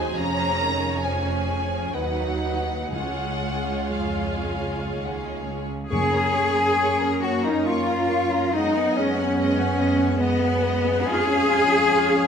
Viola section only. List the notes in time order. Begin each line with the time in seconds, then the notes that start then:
Already playing: F#3 D#4
0.16 F3 C#4
0.59 D#3
1.03 F3 C#4
1.95 F#3 D#4
2.94 G#3 F4
5.90 A#3
6.14 C#4
6.35 A#3
6.58 C#4
6.80 A#3
7.02 C#4
7.23 A#3
7.47 C#4
7.68 A#3
7.89 C#4
8.10 A#3
8.34 C#4
8.55 G#3
8.77 B3
8.98 G#3
9.19 B3
9.39 G#3
9.60 B3
9.80 G#3
10.00 B3
10.19 G#3
10.40 B3
10.61 G#3
10.85 B3
11.08 F4
11.29 C#4
11.49 F4
11.70 C#4
11.92 F4
12.13 C#4